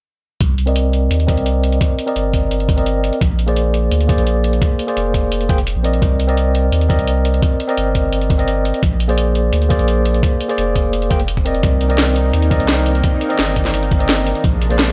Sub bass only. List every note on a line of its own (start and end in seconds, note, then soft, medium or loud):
0.41 1.09 C2 medium
1.11 1.36 D#2 loud
1.37 1.79 C2 medium
2.16 3.11 G1 medium
3.21 3.90 A#1 medium
3.92 4.17 D2 loud
4.18 4.60 A#1 loud
4.97 5.75 F1 medium
5.76 6.01 A#1 medium
6.02 6.71 C2 loud
6.72 6.97 D#2 loud
6.99 7.41 C2 medium
7.78 8.73 G1 medium
8.83 9.52 A#1 medium
9.53 9.78 D2 loud
9.79 10.22 A#1 loud
10.58 11.19 F1 medium
11.20 11.62 F1 medium
11.63 12.32 C2 medium
12.34 12.59 D#2 loud
12.60 13.02 C2 loud
13.39 14.34 G1 medium
14.44 14.92 A#1 medium